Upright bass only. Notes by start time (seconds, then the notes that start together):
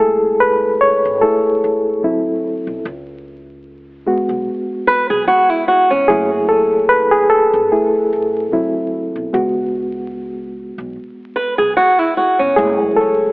Already playing: F#1
1.05 G#1
1.64 A1
2.04 D2
2.67 B1
2.85 C#2
4.29 B1
5.10 B1
5.91 E1
6.10 F#1
7.53 G#1
8.13 A1
8.53 D2
9.16 B1
9.34 C#2
10.78 B1
11.59 B1
12.40 E1
12.58 F#1